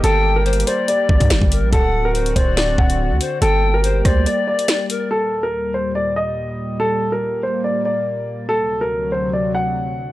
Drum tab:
HH |x-----------x-x-x-x-----x--------x--x-----x-----|x-----------x--x--x-----x--------x--------x-----|x-----------x-----x-----x--------x--x-----x-----|------------------------------------------------|
SD |------------------------------------o-----------|------------------------o-----------------------|------------------r-----------------o-----------|------------------------------------------------|
BD |------------------------------o--o-----o--------|o-----------------o-----------o-----------------|------------------o-----------------------------|------------------------------------------------|

HH |------------------------------------------------|------------------------------------------------|
SD |------------------------------------------------|------------------------------------------------|
BD |------------------------------------------------|------------------------------------------------|